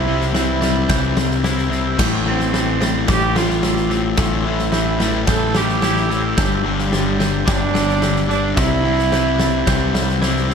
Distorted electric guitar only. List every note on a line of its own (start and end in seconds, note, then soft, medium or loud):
0.06 0.32 C3 medium
0.06 0.34 G3 medium
0.06 0.35 C4 medium
0.33 0.60 C3 medium
0.33 0.61 G3 medium
0.33 0.62 C4 medium
0.61 0.87 C3 medium
0.61 0.89 G3 medium
0.61 0.89 C4 loud
0.88 1.15 C3 medium
0.88 1.16 G3 medium
0.88 1.17 C4 loud
1.16 1.42 C3 medium
1.16 1.43 G3 medium
1.16 1.44 C4 medium
1.43 1.69 C3 medium
1.43 1.70 G3 medium
1.43 1.71 C4 medium
1.70 1.96 C3 medium
1.70 1.98 G3 medium
1.70 1.98 C4 medium
1.98 2.25 A2 medium
1.98 2.25 E3 medium
1.98 2.26 A3 medium
2.25 2.52 A2 medium
2.25 2.53 E3 medium
2.25 2.54 A3 medium
2.53 2.80 A2 medium
2.53 2.81 E3 medium
2.53 2.82 A3 medium
2.81 3.07 A2 medium
2.81 3.07 E3 medium
2.81 3.08 A3 medium
3.08 3.35 A2 medium
3.08 3.35 E3 loud
3.08 3.36 A3 loud
3.36 3.62 A2 medium
3.36 3.63 E3 medium
3.36 3.63 A3 medium
3.63 3.89 A2 medium
3.63 3.90 E3 medium
3.63 3.91 A3 medium
3.90 4.16 A2 medium
3.90 4.17 E3 medium
3.90 4.18 A3 medium
4.17 4.43 A2 medium
4.17 4.44 E3 medium
4.17 4.45 A3 medium
4.45 4.71 A2 medium
4.45 4.72 E3 medium
4.45 4.72 A3 medium
4.72 4.98 A2 medium
4.72 4.99 E3 medium
4.72 5.00 A3 medium
5.00 5.26 A2 medium
5.00 5.27 E3 medium
5.00 5.28 A3 medium
5.27 5.53 A2 loud
5.27 5.54 E3 loud
5.27 5.55 A3 loud
5.54 5.81 A2 medium
5.54 5.82 E3 medium
5.54 5.82 A3 medium
5.82 6.08 A2 medium
5.82 6.09 E3 medium
5.82 6.09 A3 medium
6.09 6.35 A2 medium
6.09 6.36 E3 medium
6.09 6.36 A3 medium
6.37 6.63 G2 medium
6.37 6.64 D3 medium
6.37 6.65 G3 medium
6.65 6.90 G2 medium
6.65 6.91 D3 medium
6.65 6.92 G3 medium
6.91 7.17 G2 medium
6.91 7.18 D3 medium
6.91 7.20 G3 medium
7.18 7.45 G2 medium
7.18 7.46 D3 medium
7.18 7.47 G3 loud
7.46 7.73 G2 medium
7.46 7.74 D3 loud
7.46 7.75 G3 loud
7.74 8.00 G2 medium
7.74 8.01 D3 medium
7.74 8.02 G3 medium
8.01 8.28 G2 medium
8.01 8.29 D3 medium
8.01 8.30 G3 medium
8.29 8.55 G2 medium
8.29 8.55 D3 medium
8.29 8.57 G3 medium
8.57 8.82 C3 medium
8.57 8.83 G3 medium
8.57 8.84 C4 loud
8.84 9.10 C3 medium
8.84 9.11 G3 medium
8.84 9.12 C4 medium
9.11 9.38 C3 medium
9.11 9.38 G3 medium
9.11 9.39 C4 medium
9.39 9.65 C3 medium
9.39 9.66 G3 medium
9.39 9.66 C4 medium
9.66 9.93 C3 medium
9.66 9.94 G3 loud
9.66 9.94 C4 loud
9.94 10.21 C3 medium
9.94 10.22 G3 medium
9.94 10.22 C4 medium
10.22 10.48 C3 medium
10.22 10.48 G3 medium
10.22 10.49 C4 medium
10.49 10.54 C3 medium
10.49 10.54 G3 medium
10.49 10.54 C4 medium